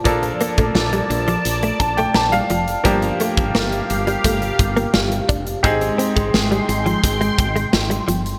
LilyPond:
<<
  \new Staff \with { instrumentName = "Analog synth pad" } { \time 4/4 \key bes \lydian \tempo 4 = 86 <d'' a''>1 | <g' f''>1 | <aes g'' c'''>1 | }
  \new Staff \with { instrumentName = "Grand piano" } { \time 4/4 \key bes \lydian << { r2 r8 a''16 g''16 a''16 f''8. | r1 | r1 | } \\ { <f bes d' a'>1 | <f bes d' g'>1 | <c' ees' g' aes'>1 | } >> }
  \new Staff \with { instrumentName = "Clean electric guitar" } { \clef bass \time 4/4 \key bes \lydian r8 bes16 a16 r16 g16 r16 f16 r16 a16 r16 a16 r16 g16 f16 r16 | g16 r16 a16 r16 bes16 r8 g16 a16 r8 bes16 r8 d'16 r16 | r8 c'16 aes16 r16 g16 r16 f16 r16 aes16 r16 aes16 r16 g16 f16 r16 | }
  \new Staff \with { instrumentName = "Fretless electric bass" } { \clef bass \time 4/4 \key bes \lydian bes,,8 r16 bes,,16 bes,,8 bes,,8 bes,,8 bes,,8 bes,,8 f,,8 | g,,8 r16 g,,16 g,,8 g,,8 g,,8 g,,8 g,,8 f,,8 | aes,,8 r16 aes,,16 aes,,8 aes,,8 aes,,8 aes,,8 aes,,8 g,,8 | }
  \new DrumStaff \with { instrumentName = "Drums" } \drummode { \time 4/4 <hh bd>16 hh16 hh16 <hh bd>16 sn16 hh16 hh16 hh16 hh16 hh16 <hh bd>16 hh16 sn16 hh16 hh16 hh16 | <hh bd>16 hh16 hh16 <hh bd>16 sn16 hh16 hh16 hh16 <hh bd>16 hh16 <hh bd>16 hh16 sn16 hh16 <hh bd>16 hh16 | <hh bd>16 hh16 hh16 <hh bd>16 sn16 hh16 hh16 hh16 <hh bd>16 hh16 <hh bd>16 hh16 sn16 hh16 hh16 hh16 | }
>>